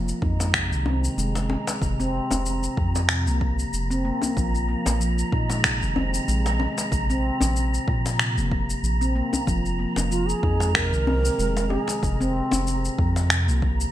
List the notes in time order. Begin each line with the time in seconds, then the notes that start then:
Already playing: F1 F3 A#5
0.09 shaker
0.22 F2 D#4, kick
0.40 G#3, djembe slap, shaker
0.54 C3, finger snap, kick, shaker
0.71 C2 D#3, shaker
0.86 C4, djembe bass
1.04 shaker
1.18 F1 G#3, shaker
1.35 G#3, djembe slap, shaker
1.50 djembe tone
1.67 G#3, djembe slap, shaker
1.82 F1 C3, kick, shaker
2.00 C4, shaker
2.31 F1, djembe slap, djembe tone, djembe bass, shaker
2.46 shaker
2.63 shaker
2.77 F2 F3, kick
2.95 djembe slap, shaker
3.09 C3, finger snap, shaker
3.27 C2 A#3, shaker
3.41 kick
3.59 shaker
3.73 F1, shaker
3.91 C4, shaker
4.05 A#3
4.22 A#3, djembe tone, djembe bass, shaker
4.37 A#1 F3, kick, shaker
4.55 shaker
4.69 A#3
4.86 A#1, djembe slap, djembe tone, shaker
5.00 F3, shaker
5.19 shaker
5.32 A#2 D#4, kick
5.50 G#3, djembe slap, shaker
5.64 C3, finger snap, kick, shaker
5.82 F1 D#3, shaker
5.96 C4, djembe bass
6.14 shaker
6.28 A#1 G#3, shaker
6.46 G#3, djembe slap, shaker
6.60 djembe tone
6.78 G#3, djembe slap, shaker
6.92 A#1 C3, kick, shaker
7.10 C4, shaker
7.41 A#1, djembe slap, djembe tone, djembe bass, shaker
7.56 shaker
7.74 shaker
7.88 A#2 F3, kick
8.06 djembe slap, shaker
8.19 C3, finger snap, shaker
8.37 F1 A#3, shaker
8.52 kick
8.70 shaker
8.83 A#1, shaker
9.01 C4, shaker
9.15 A#3
9.33 A#3, djembe tone, djembe bass, shaker
9.47 F1 F3, kick, shaker
9.66 shaker
9.79 A#3
9.96 F1, djembe slap, djembe tone, shaker
10.11 F3 F4, shaker
10.28 G#4, shaker
10.43 F2 D#4, kick
10.60 G#3, djembe slap, shaker
10.74 C3 A#4, finger snap, kick, shaker
10.93 C2 D#3, shaker
11.07 C4, djembe bass
11.25 shaker
11.39 F1 G#3, shaker
11.56 G#3, djembe slap, shaker
11.70 G4, djembe tone
11.81 G#4
11.88 G#3, djembe slap, shaker
12.03 F1 C3, kick, shaker
12.21 C4, shaker
12.51 F1, djembe slap, djembe tone, djembe bass, shaker
12.67 shaker
12.85 shaker
12.98 F2 F3, kick
13.16 djembe slap, shaker
13.30 C3, finger snap, shaker
13.48 C2 A#3, shaker
13.62 kick
13.81 shaker